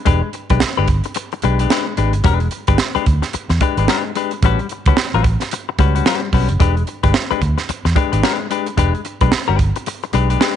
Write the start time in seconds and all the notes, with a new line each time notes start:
0.05 E1 G#3 D4 G4 B4, kick, closed hi-hat
0.23 muted clean electric guitar stroke
0.33 muted clean electric guitar stroke, closed hi-hat
0.50 B1 G#3 D4 G4 B4, kick, closed hi-hat
0.60 muted clean electric guitar stroke, muted fingered electric bass stroke, snare
0.77 G1 G#3 D4 G4 B4
0.88 kick, closed hi-hat
1.04 muted clean electric guitar stroke, closed hi-hat
1.14 muted clean electric guitar stroke, closed hi-hat
1.32 muted clean electric guitar stroke, closed hi-hat
1.42 B1 G#3 D4 G4 B4, closed hi-hat
1.59 G#3 D4 G4 B4, closed hi-hat
1.70 G#3 D4 G4 B4, snare
1.87 muted clean electric guitar stroke
1.97 G#1 G#3 D4 G4 B4, closed hi-hat
2.13 G1, muted clean electric guitar stroke, closed hi-hat
2.24 E1 G#3 D4 G4 B4, kick, closed hi-hat
2.40 muted clean electric guitar stroke, closed hi-hat
2.51 muted clean electric guitar stroke, closed hi-hat
2.67 G1 G#3 D4 G4 B4, kick, closed hi-hat
2.78 muted clean electric guitar stroke, snare
2.95 G#3 D4 G4 B4, muted fingered electric bass stroke, closed hi-hat
3.06 D2, muted clean electric guitar stroke, kick, closed hi-hat
3.22 muted clean electric guitar stroke, snare, closed hi-hat
3.33 muted clean electric guitar stroke, muted fingered electric bass stroke, closed hi-hat
3.49 E2, muted clean electric guitar stroke, snare, closed hi-hat
3.61 G#3 D4 G4 B4, kick, closed hi-hat
3.77 G#1 G#3 D4 G4 B4, closed hi-hat
3.88 G#3 D4 G4 B4, snare
4.05 muted clean electric guitar stroke
4.15 G#3 D4 G4 B4, closed hi-hat
4.31 muted clean electric guitar stroke, closed hi-hat
4.42 A1 G3 C#4 F#4 B4, kick, closed hi-hat
4.59 muted clean electric guitar stroke, closed hi-hat
4.69 muted clean electric guitar stroke, closed hi-hat
4.86 C#2 G3 C#4 F#4 B4, kick, closed hi-hat
4.97 muted clean electric guitar stroke, snare
5.14 A1 G3 C#4 F#4 B4, closed hi-hat
5.24 kick, closed hi-hat
5.40 muted clean electric guitar stroke, snare, closed hi-hat
5.51 muted clean electric guitar stroke, closed hi-hat
5.69 muted clean electric guitar stroke
5.78 C#2 G3 C#4 F#4 B4, kick, closed hi-hat
5.95 G3 C#4 F#4 B4, closed hi-hat
6.06 G3 C#4 F#4 B4, snare
6.22 muted clean electric guitar stroke
6.33 B1 G3 C#4 F#4 B4, kick, open hi-hat
6.49 F#1, muted clean electric guitar stroke, closed hi-hat
6.60 E1 G#3 D4 G4 B4, kick, closed hi-hat
6.77 muted clean electric guitar stroke, closed hi-hat
6.87 muted clean electric guitar stroke, closed hi-hat
7.03 G1 G#3 D4 G4 B4, kick, closed hi-hat
7.14 muted clean electric guitar stroke, snare
7.31 G#3 D4 G4 B4, muted fingered electric bass stroke, closed hi-hat
7.42 D2, muted clean electric guitar stroke, kick, closed hi-hat
7.58 muted clean electric guitar stroke, snare, closed hi-hat
7.69 muted fingered electric bass stroke, muted clean electric guitar stroke, closed hi-hat
7.85 E2, muted clean electric guitar stroke, snare, closed hi-hat
7.96 G#3 D4 G4 B4, kick, closed hi-hat
8.12 G#1 G#3 D4 G4 B4, closed hi-hat
8.23 G#3 D4 G4 B4, snare
8.40 muted clean electric guitar stroke
8.50 G#3 D4 G4 B4, closed hi-hat
8.66 muted clean electric guitar stroke, closed hi-hat
8.77 E1 G#3 D4 G4 B4, kick, closed hi-hat
8.94 muted clean electric guitar stroke, closed hi-hat
9.05 muted clean electric guitar stroke, closed hi-hat
9.21 B1 G#3 D4 G4 B4, kick, closed hi-hat
9.32 muted fingered electric bass stroke, snare
9.48 G1 G#3 D4 G4 B4
9.59 muted clean electric guitar stroke, kick, closed hi-hat
9.76 muted clean electric guitar stroke, closed hi-hat
9.86 muted clean electric guitar stroke, closed hi-hat
10.03 muted clean electric guitar stroke, closed hi-hat
10.13 B1 G#3 D4 G4 B4, closed hi-hat
10.30 G#3 D4 G4 B4, closed hi-hat
10.40 G#3 D4 G4 B4, snare